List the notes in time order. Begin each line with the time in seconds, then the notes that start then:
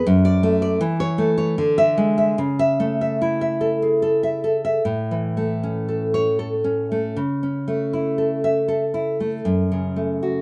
0.07 F#2
0.25 D5
0.43 A3
0.62 D5
0.81 E3
1.00 C#5
1.18 A3
1.38 C#5
1.58 D3
1.78 E5
1.98 G#3
2.18 E5
2.38 C#3
2.59 E5
2.80 A3
3.01 E5
3.22 E4
3.41 E5
3.61 A4
3.82 G#4
4.02 A4
4.23 E5
4.44 A4
4.65 E5
4.85 A2
5.11 E3
5.37 A3
5.63 C#4
5.88 A4
6.14 C#5
6.39 A4
6.64 C#4
6.92 A3
7.16 C#3
7.43 C#4
7.68 A3
7.93 E4
8.18 A4
8.44 E5
8.68 A4
8.94 E4
9.20 A3
9.45 F#2
9.72 C#3
9.96 A3
10.23 F#4